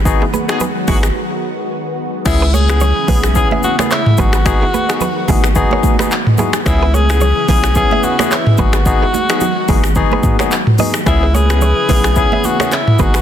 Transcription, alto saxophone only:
X:1
M:4/4
L:1/8
Q:"Swing 16ths" 1/4=109
K:C#m
V:1 name="Alto saxophone"
z8 | E G3 G F E F- | F4- F z3 | E G2 G G F E F- |
F4- F z3 | E G3 G F E F |]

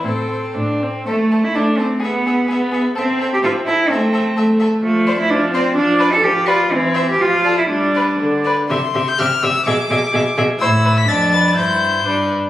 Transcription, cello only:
X:1
M:2/4
L:1/16
Q:1/4=126
K:Am
V:1 name="Cello"
A,,4 A,,4 | A,3 E D2 C2 | B,6 z2 | C3 G F2 E2 |
C6 z2 | [K:C] A,3 E D2 C2 | D3 A G2 F2 | C3 G F3 E |
D6 z2 | C,2 C,2 C,2 C,2 | B,,2 B,,2 B,,2 B,,2 | A,,4 F,,4 |
G,,4 G,,2 z2 |]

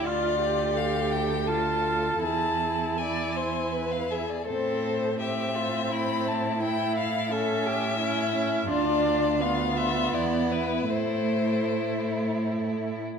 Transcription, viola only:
X:1
M:3/4
L:1/8
Q:1/4=82
K:Am
V:1 name="Viola"
F G3 F2 | E4- E z | C2 C4 | E2 ^C2 C C |
D2 B,4 | A,4- A, z |]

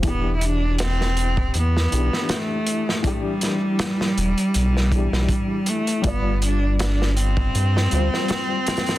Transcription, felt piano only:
X:1
M:4/4
L:1/8
Q:"Swing 16ths" 1/4=80
K:Ephr
V:1 name="Felt piano"
[E,DG]4- [E,DG] [E,DG]3 | [E,DG]4- [E,DG] [E,DG]3 | [G,Fd]4- [G,Fd] [G,Fc]3 |]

